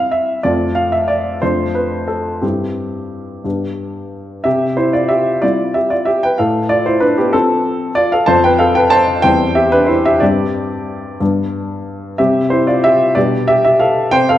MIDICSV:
0, 0, Header, 1, 2, 480
1, 0, Start_track
1, 0, Key_signature, 0, "major"
1, 0, Tempo, 649351
1, 328, Time_signature, 6, 3, 24, 8
1, 1296, Tempo, 675676
1, 3216, Tempo, 637620
1, 6576, Tempo, 650759
1, 10604, End_track
2, 0, Start_track
2, 0, Title_t, "Grand piano"
2, 0, Program_c, 0, 0
2, 0, Note_on_c, 0, 55, 38
2, 0, Note_on_c, 0, 60, 44
2, 0, Note_on_c, 0, 64, 47
2, 0, Note_on_c, 0, 77, 80
2, 85, Note_on_c, 0, 76, 67
2, 92, Note_off_c, 0, 77, 0
2, 300, Note_off_c, 0, 60, 0
2, 301, Note_off_c, 0, 55, 0
2, 301, Note_off_c, 0, 64, 0
2, 321, Note_on_c, 0, 74, 78
2, 324, Note_off_c, 0, 76, 0
2, 329, Note_on_c, 0, 57, 36
2, 330, Note_on_c, 0, 41, 49
2, 333, Note_on_c, 0, 60, 37
2, 337, Note_on_c, 0, 65, 39
2, 492, Control_c, 0, 64, 127
2, 555, Note_on_c, 0, 77, 83
2, 562, Note_off_c, 0, 74, 0
2, 681, Note_off_c, 0, 77, 0
2, 681, Note_on_c, 0, 76, 68
2, 796, Note_on_c, 0, 74, 72
2, 805, Note_off_c, 0, 76, 0
2, 1022, Note_off_c, 0, 57, 0
2, 1024, Note_off_c, 0, 60, 0
2, 1026, Note_off_c, 0, 65, 0
2, 1030, Note_off_c, 0, 41, 0
2, 1045, Note_off_c, 0, 74, 0
2, 1047, Note_on_c, 0, 72, 74
2, 1054, Note_on_c, 0, 41, 53
2, 1054, Note_on_c, 0, 57, 36
2, 1055, Control_c, 0, 64, 0
2, 1056, Note_on_c, 0, 62, 35
2, 1062, Note_on_c, 0, 65, 39
2, 1212, Control_c, 0, 64, 127
2, 1291, Note_on_c, 0, 71, 61
2, 1294, Note_off_c, 0, 72, 0
2, 1525, Note_on_c, 0, 69, 57
2, 1532, Note_off_c, 0, 71, 0
2, 1749, Note_off_c, 0, 57, 0
2, 1750, Note_off_c, 0, 62, 0
2, 1753, Note_off_c, 0, 65, 0
2, 1757, Note_off_c, 0, 41, 0
2, 1768, Note_on_c, 0, 67, 49
2, 1771, Note_on_c, 0, 43, 39
2, 1772, Note_off_c, 0, 69, 0
2, 1773, Note_on_c, 0, 60, 30
2, 1780, Note_on_c, 0, 64, 27
2, 1785, Control_c, 0, 64, 0
2, 1914, Control_c, 0, 64, 127
2, 2470, Note_off_c, 0, 60, 0
2, 2474, Note_off_c, 0, 64, 0
2, 2476, Note_off_c, 0, 43, 0
2, 2494, Note_off_c, 0, 67, 0
2, 2497, Note_on_c, 0, 43, 37
2, 2498, Note_on_c, 0, 59, 28
2, 2503, Note_on_c, 0, 62, 28
2, 2504, Note_on_c, 0, 67, 31
2, 2510, Control_c, 0, 64, 0
2, 2626, Control_c, 0, 64, 127
2, 3186, Note_off_c, 0, 59, 0
2, 3189, Note_off_c, 0, 62, 0
2, 3190, Note_off_c, 0, 67, 0
2, 3193, Note_off_c, 0, 43, 0
2, 3203, Note_on_c, 0, 76, 75
2, 3212, Note_on_c, 0, 48, 51
2, 3215, Note_on_c, 0, 67, 59
2, 3225, Control_c, 0, 64, 0
2, 3361, Control_c, 0, 64, 127
2, 3443, Note_off_c, 0, 67, 0
2, 3451, Note_on_c, 0, 72, 68
2, 3454, Note_off_c, 0, 76, 0
2, 3457, Note_on_c, 0, 64, 55
2, 3573, Note_off_c, 0, 64, 0
2, 3574, Note_on_c, 0, 74, 64
2, 3578, Note_off_c, 0, 72, 0
2, 3583, Note_on_c, 0, 65, 52
2, 3689, Note_on_c, 0, 76, 76
2, 3697, Note_off_c, 0, 65, 0
2, 3700, Note_on_c, 0, 67, 61
2, 3701, Note_off_c, 0, 74, 0
2, 3926, Note_off_c, 0, 48, 0
2, 3930, Note_off_c, 0, 67, 0
2, 3939, Note_on_c, 0, 74, 77
2, 3942, Note_off_c, 0, 76, 0
2, 3947, Note_on_c, 0, 55, 37
2, 3948, Note_on_c, 0, 65, 53
2, 3950, Note_on_c, 0, 64, 39
2, 3951, Note_on_c, 0, 60, 35
2, 3957, Control_c, 0, 64, 0
2, 4176, Note_off_c, 0, 65, 0
2, 4184, Note_on_c, 0, 76, 70
2, 4188, Note_off_c, 0, 74, 0
2, 4193, Note_on_c, 0, 67, 53
2, 4305, Note_on_c, 0, 74, 67
2, 4306, Note_off_c, 0, 67, 0
2, 4310, Note_off_c, 0, 76, 0
2, 4310, Note_on_c, 0, 65, 52
2, 4419, Note_on_c, 0, 76, 71
2, 4424, Note_off_c, 0, 65, 0
2, 4430, Note_off_c, 0, 74, 0
2, 4430, Note_on_c, 0, 67, 61
2, 4543, Note_off_c, 0, 67, 0
2, 4546, Note_off_c, 0, 76, 0
2, 4553, Note_on_c, 0, 79, 80
2, 4564, Note_on_c, 0, 71, 60
2, 4641, Note_off_c, 0, 55, 0
2, 4643, Note_off_c, 0, 64, 0
2, 4644, Note_off_c, 0, 60, 0
2, 4664, Note_on_c, 0, 77, 70
2, 4670, Note_off_c, 0, 71, 0
2, 4672, Note_off_c, 0, 79, 0
2, 4673, Note_on_c, 0, 69, 57
2, 4675, Note_on_c, 0, 45, 53
2, 4834, Control_c, 0, 64, 127
2, 4892, Note_off_c, 0, 69, 0
2, 4899, Note_on_c, 0, 74, 82
2, 4904, Note_off_c, 0, 77, 0
2, 4904, Note_on_c, 0, 65, 54
2, 5015, Note_off_c, 0, 65, 0
2, 5021, Note_off_c, 0, 74, 0
2, 5025, Note_on_c, 0, 72, 67
2, 5034, Note_on_c, 0, 64, 52
2, 5134, Note_on_c, 0, 71, 80
2, 5140, Note_off_c, 0, 64, 0
2, 5142, Note_on_c, 0, 62, 56
2, 5143, Note_off_c, 0, 72, 0
2, 5253, Note_off_c, 0, 62, 0
2, 5257, Note_off_c, 0, 71, 0
2, 5265, Note_on_c, 0, 67, 68
2, 5271, Note_on_c, 0, 59, 57
2, 5360, Note_off_c, 0, 45, 0
2, 5377, Note_off_c, 0, 59, 0
2, 5378, Note_on_c, 0, 69, 83
2, 5382, Note_off_c, 0, 67, 0
2, 5386, Control_c, 0, 64, 0
2, 5386, Note_on_c, 0, 60, 58
2, 5388, Note_on_c, 0, 53, 42
2, 5827, Note_off_c, 0, 60, 0
2, 5847, Note_on_c, 0, 74, 89
2, 5853, Note_off_c, 0, 69, 0
2, 5862, Note_on_c, 0, 65, 64
2, 5970, Note_off_c, 0, 65, 0
2, 5970, Note_off_c, 0, 74, 0
2, 5975, Note_on_c, 0, 77, 88
2, 5985, Note_on_c, 0, 69, 65
2, 6068, Note_off_c, 0, 53, 0
2, 6082, Note_on_c, 0, 81, 92
2, 6091, Note_off_c, 0, 69, 0
2, 6091, Note_on_c, 0, 53, 46
2, 6091, Note_on_c, 0, 72, 83
2, 6092, Note_on_c, 0, 41, 59
2, 6095, Note_off_c, 0, 77, 0
2, 6096, Note_on_c, 0, 60, 47
2, 6204, Note_off_c, 0, 72, 0
2, 6208, Note_off_c, 0, 81, 0
2, 6214, Note_on_c, 0, 79, 93
2, 6224, Note_on_c, 0, 71, 76
2, 6234, Control_c, 0, 64, 127
2, 6325, Note_on_c, 0, 77, 91
2, 6331, Note_off_c, 0, 71, 0
2, 6332, Note_on_c, 0, 69, 72
2, 6334, Note_off_c, 0, 79, 0
2, 6445, Note_off_c, 0, 69, 0
2, 6450, Note_off_c, 0, 77, 0
2, 6450, Note_on_c, 0, 79, 89
2, 6461, Note_on_c, 0, 71, 72
2, 6563, Note_on_c, 0, 81, 108
2, 6570, Note_off_c, 0, 71, 0
2, 6571, Note_on_c, 0, 72, 77
2, 6572, Note_off_c, 0, 79, 0
2, 6781, Note_off_c, 0, 53, 0
2, 6783, Note_off_c, 0, 60, 0
2, 6789, Note_off_c, 0, 41, 0
2, 6793, Note_off_c, 0, 72, 0
2, 6800, Note_on_c, 0, 79, 107
2, 6806, Note_off_c, 0, 81, 0
2, 6809, Note_on_c, 0, 55, 47
2, 6809, Note_on_c, 0, 72, 73
2, 6810, Note_on_c, 0, 40, 58
2, 6814, Note_on_c, 0, 60, 45
2, 6820, Control_c, 0, 64, 0
2, 6950, Control_c, 0, 64, 127
2, 7032, Note_off_c, 0, 72, 0
2, 7042, Note_on_c, 0, 76, 78
2, 7044, Note_off_c, 0, 79, 0
2, 7044, Note_on_c, 0, 67, 71
2, 7158, Note_off_c, 0, 67, 0
2, 7165, Note_off_c, 0, 76, 0
2, 7166, Note_on_c, 0, 71, 89
2, 7179, Note_on_c, 0, 62, 58
2, 7274, Note_on_c, 0, 72, 68
2, 7286, Note_off_c, 0, 62, 0
2, 7286, Note_on_c, 0, 64, 57
2, 7288, Note_off_c, 0, 71, 0
2, 7399, Note_off_c, 0, 64, 0
2, 7402, Note_off_c, 0, 72, 0
2, 7413, Note_on_c, 0, 76, 84
2, 7419, Note_on_c, 0, 67, 64
2, 7500, Note_off_c, 0, 55, 0
2, 7503, Note_off_c, 0, 60, 0
2, 7508, Note_off_c, 0, 40, 0
2, 7521, Note_on_c, 0, 74, 70
2, 7524, Note_off_c, 0, 67, 0
2, 7530, Note_on_c, 0, 43, 58
2, 7530, Note_on_c, 0, 55, 39
2, 7532, Note_off_c, 0, 76, 0
2, 7535, Note_on_c, 0, 67, 58
2, 7536, Note_on_c, 0, 60, 45
2, 7538, Control_c, 0, 64, 0
2, 7544, Note_on_c, 0, 62, 36
2, 7694, Control_c, 0, 64, 127
2, 8231, Note_off_c, 0, 55, 0
2, 8233, Note_off_c, 0, 67, 0
2, 8234, Note_off_c, 0, 60, 0
2, 8238, Note_off_c, 0, 43, 0
2, 8238, Note_off_c, 0, 62, 0
2, 8256, Note_off_c, 0, 74, 0
2, 8261, Note_on_c, 0, 43, 55
2, 8261, Note_on_c, 0, 55, 35
2, 8270, Note_on_c, 0, 59, 35
2, 8271, Control_c, 0, 64, 0
2, 8271, Note_on_c, 0, 62, 36
2, 8418, Control_c, 0, 64, 127
2, 8961, Note_off_c, 0, 55, 0
2, 8965, Note_off_c, 0, 59, 0
2, 8965, Note_off_c, 0, 62, 0
2, 8968, Note_off_c, 0, 43, 0
2, 8983, Note_on_c, 0, 76, 74
2, 8988, Note_on_c, 0, 67, 64
2, 8991, Note_on_c, 0, 55, 36
2, 8993, Note_on_c, 0, 48, 53
2, 8995, Control_c, 0, 64, 0
2, 8995, Note_on_c, 0, 60, 38
2, 9133, Control_c, 0, 64, 127
2, 9210, Note_off_c, 0, 67, 0
2, 9219, Note_on_c, 0, 72, 74
2, 9225, Note_off_c, 0, 76, 0
2, 9230, Note_on_c, 0, 64, 52
2, 9340, Note_off_c, 0, 64, 0
2, 9342, Note_off_c, 0, 72, 0
2, 9343, Note_on_c, 0, 74, 71
2, 9350, Note_on_c, 0, 65, 59
2, 9459, Note_off_c, 0, 65, 0
2, 9464, Note_off_c, 0, 74, 0
2, 9466, Note_on_c, 0, 76, 93
2, 9472, Note_on_c, 0, 67, 63
2, 9676, Note_off_c, 0, 55, 0
2, 9678, Note_off_c, 0, 60, 0
2, 9685, Note_off_c, 0, 48, 0
2, 9691, Note_off_c, 0, 67, 0
2, 9696, Note_on_c, 0, 74, 82
2, 9704, Note_on_c, 0, 47, 57
2, 9704, Note_on_c, 0, 55, 43
2, 9704, Note_on_c, 0, 67, 64
2, 9705, Note_off_c, 0, 76, 0
2, 9711, Note_on_c, 0, 62, 40
2, 9714, Control_c, 0, 64, 0
2, 9830, Control_c, 0, 64, 127
2, 9927, Note_off_c, 0, 67, 0
2, 9937, Note_on_c, 0, 76, 89
2, 9940, Note_off_c, 0, 74, 0
2, 9948, Note_on_c, 0, 67, 64
2, 10050, Note_off_c, 0, 76, 0
2, 10057, Note_off_c, 0, 67, 0
2, 10061, Note_on_c, 0, 76, 83
2, 10072, Note_on_c, 0, 67, 61
2, 10173, Note_on_c, 0, 77, 80
2, 10179, Note_off_c, 0, 67, 0
2, 10180, Note_on_c, 0, 69, 64
2, 10181, Note_off_c, 0, 76, 0
2, 10388, Note_off_c, 0, 55, 0
2, 10391, Note_off_c, 0, 62, 0
2, 10396, Note_off_c, 0, 47, 0
2, 10400, Note_off_c, 0, 69, 0
2, 10408, Note_on_c, 0, 79, 108
2, 10413, Note_off_c, 0, 77, 0
2, 10414, Note_on_c, 0, 48, 61
2, 10416, Note_on_c, 0, 72, 81
2, 10427, Control_c, 0, 64, 0
2, 10526, Note_off_c, 0, 72, 0
2, 10530, Note_off_c, 0, 79, 0
2, 10537, Note_on_c, 0, 77, 97
2, 10547, Note_on_c, 0, 69, 70
2, 10574, Control_c, 0, 64, 127
2, 10604, Note_off_c, 0, 48, 0
2, 10604, Note_off_c, 0, 69, 0
2, 10604, Note_off_c, 0, 77, 0
2, 10604, End_track
0, 0, End_of_file